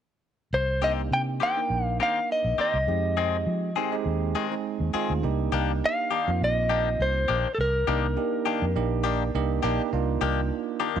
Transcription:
0.53 fingered electric bass C2, clean electric guitar C5
0.82 clean electric guitar D#3 A#3 C4 G4 D#5, tine electric piano A#3 D4 D#4 G4
1.11 fingered electric bass C3, clean electric guitar G5
1.40 clean electric guitar D#3 A#3 C4 G4 G5
1.57 tine electric piano A#3 D4 D#4 A#4
1.70 fingered electric bass A#1
1.85 clean electric guitar F5
2.00 clean electric guitar D#3 A#3 C4 G4 F5
2.32 clean electric guitar D#5
2.44 fingered electric bass A#1
2.58 clean electric guitar D#3 A#3 C4 G4 D#5
2.74 fingered electric bass C2
2.87 fingered electric bass F2, tine electric piano G#3 C4 D#4 G4
3.17 clean electric guitar D#3 G#3 C4 G#4
3.46 fingered electric bass F3
3.76 clean electric guitar D#3 G#3 C4 G#4, tine electric piano G#3 C4 D#4 G4
3.92 tine electric piano G#3 C4 D#4 G4
4.06 fingered electric bass D#2
4.35 clean electric guitar D#3 G#3 C4 G#4
4.51 tine electric piano G#3 C4 D#4 G#4
4.80 fingered electric bass D#2
4.94 clean electric guitar D#3 G#3 C4 G#4, tine electric piano G#3 C4 D#4 F4, muted fingered electric bass stroke
5.10 fingered electric bass D2
5.23 fingered electric bass C2, tine electric piano A#3 D4 D#4 G4
5.52 fingered electric bass C2, clean electric guitar D#3 A#3 D4 G4
5.86 clean electric guitar F5
6.11 clean electric guitar D#3 A#3 D4 G4
6.28 fingered electric bass F2, tine electric piano A#3 C4 D#4 F4
6.41 fingered electric bass A#1, clean electric guitar D#5
6.70 clean electric guitar D#3 A#3 D4 G4
7.00 fingered electric bass C2, clean electric guitar C5
7.28 fingered electric bass A#1, clean electric guitar D#3 A#3 D4 G4
7.55 fingered electric bass C2, clean electric guitar A4
7.61 clean electric guitar A#4
7.87 fingered electric bass C2, clean electric guitar D#3 A#3 D4 G4, tine electric piano A#3 D4 D#4 A#4
8.17 tine electric piano A#3 D4 D#4 G4
8.46 clean electric guitar D#3 A#3 D4 G4
8.62 fingered electric bass F2
8.76 fingered electric bass A#1, tine electric piano A#3 D4 D#4 G4
9.04 clean electric guitar D#3 A#3 D4 G4, tine electric piano D5
9.34 fingered electric bass C2, tine electric piano A#3 D4 D#4 G4 D#5
9.63 fingered electric bass A#1, clean electric guitar D#3 A#3 D4 G4, tine electric piano A#3 D4 D#4 G4 G5
9.93 fingered electric bass C2, tine electric piano A#3 D4 D#4 F4
10.21 fingered electric bass C2, clean electric guitar D#3 A#3 D4 G4
10.80 clean electric guitar D#3 A#3 D4 G4
10.96 fingered electric bass F2, tine electric piano A#3 D4 D#4 F4

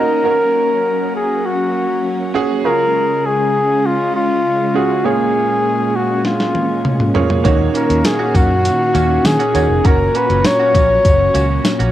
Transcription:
Already playing: string machine D#3 A#3 C#4 F#4 F5, grand piano A#3 C#4 D#4 F#4 D#5, flugelhorn A#4
0.24 string machine F#3, grand piano C#4 F#4 A#4
1.16 flugelhorn G#4
1.46 flugelhorn F#4
2.34 grand piano C#4 F#4 G#4
2.64 grand piano C#3 C#4 F4 G#4, string machine C#3 G#3 C#4, flugelhorn A#4
3.26 flugelhorn G#4
3.86 flugelhorn F4
4.16 flugelhorn F4
4.74 grand piano C#4 F4 G#4, flugelhorn F#4
5.04 grand piano A#2 A#3 C#4 F4 G#4 C#5, string machine A#2 C#4, flugelhorn G#4
5.96 flugelhorn F#4
6.25 flugelhorn F4, snare
6.40 snare
6.55 high tom
6.85 mid tom
7.00 mid tom
7.14 grand piano A#3 C#4 F4 G#4 C#5, floor tom
7.30 floor tom
7.44 fingered electric bass D#2, grand piano D#3 A#3 C#4 D#4 F#4 C#5, string machine D#3 F#4 F5, clean electric guitar A#3 C#4 F#4, kick, closed hi-hat, tambourine
7.59 muted clean electric guitar stroke
7.74 clean electric guitar A#3 C#4 F#4, flugelhorn A#4, closed hi-hat, tambourine
7.89 fingered electric bass D#2, clean electric guitar A#3 C#4 F#4, closed hi-hat
8.04 flugelhorn G#4, muted clean electric guitar stroke, snare, closed hi-hat, tambourine
8.19 clean electric guitar A#3 C#4 F#4
8.34 fingered electric bass F#2, clean electric guitar A#3 C#4 F#4, flugelhorn F#4, kick, closed hi-hat, tambourine
8.49 muted clean electric guitar stroke
8.64 muted clean electric guitar stroke, closed hi-hat, tambourine
8.79 muted clean electric guitar stroke
8.94 fingered electric bass D#2, clean electric guitar A#3 C#4 F#4, closed hi-hat, tambourine
9.09 clean electric guitar A#3 C#4 F#4
9.25 fingered electric bass D#3, flugelhorn G#4, muted clean electric guitar stroke, snare, closed hi-hat, tambourine
9.39 clean electric guitar A#3 C#4 F#4, closed hi-hat
9.54 fingered electric bass D#2, grand piano A#3 C#4 D#4 F#4 C#5, clean electric guitar A#3 C#4 F#4, closed hi-hat, tambourine
9.69 fingered electric bass F1, muted clean electric guitar stroke
9.84 fingered electric bass F#1, string machine F#3, clean electric guitar A#3 C#4 F#4, grand piano C#4 F#4 A#5, flugelhorn A#4, kick, closed hi-hat, tambourine
9.99 muted clean electric guitar stroke
10.14 clean electric guitar A#3 C#4 F#4, flugelhorn B4, closed hi-hat
10.29 fingered electric bass F#1, clean electric guitar A#3 C#4 F#4, closed hi-hat
10.45 flugelhorn C#5, muted clean electric guitar stroke, snare, closed hi-hat, tambourine
10.60 clean electric guitar A#3 C#4 F#4
10.74 fingered electric bass A#1, clean electric guitar A#3 C#4 F#4, kick, closed hi-hat, tambourine
10.90 muted clean electric guitar stroke
11.05 fingered electric bass F#1, muted clean electric guitar stroke, kick, closed hi-hat, tambourine
11.20 muted clean electric guitar stroke
11.34 fingered electric bass C#2, clean electric guitar A#3 C#4 F#4, closed hi-hat, tambourine
11.49 clean electric guitar A#3 C#4 F#4
11.64 muted clean electric guitar stroke, snare, closed hi-hat, tambourine
11.79 fingered electric bass A#1, clean electric guitar A#3 C#4 F#4, closed hi-hat

